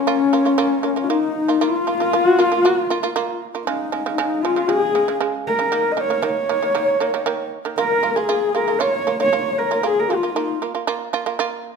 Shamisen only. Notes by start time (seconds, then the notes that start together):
0.07 A#3 F4
0.33 A#3 F4
0.45 A#3 F4
0.58 A#3 F4
0.83 A#3 F4
0.96 A#3 F4
1.10 A#3 F4
1.48 A#3 F4
1.61 A#3 F4
1.87 A#3 F4
2.00 A#3 F4
2.13 A#3 F4
2.39 A#3 F4
2.52 A#3 F4
2.65 A#3 F4
2.90 A#3 F4
3.03 A#3 F4
3.16 A#3 F4
3.55 A#3 F4
3.67 C#3 G#3
3.92 C#3 G#3
4.06 C#3 G#3
4.18 C#3 G#3
4.45 C#3 G#3
4.56 C#3 G#3
4.69 C#3 G#3
4.95 C#3 G#3
5.08 C#3 G#3
5.21 C#3 G#3
5.59 C#3 G#3
5.72 D#3 A#3
5.97 D#3 A#3
6.10 D#3 A#3
6.22 D#3 A#3
6.49 D#3 A#3
6.62 D#3 A#3
6.75 D#3 A#3
7.00 D#3 A#3
7.14 D#3 A#3
7.26 D#3 A#3
7.65 D#3 A#3
7.78 A#3 F4
8.03 A#3 F4
8.16 A#3 F4
8.29 A#3 F4
8.55 A#3 F4
8.68 A#3 F4
8.80 A#3 F4
9.07 A#3 F4
9.20 A#3 F4
9.33 A#3 F4
9.71 A#3 F4
9.83 A#3 F4
10.10 A#3 F4
10.23 A#3 F4
10.36 A#3 F4
10.62 A#3 F4
10.75 A#3 F4
10.87 A#3 F4
11.13 A#3 F4
11.26 A#3 F4
11.39 A#3 F4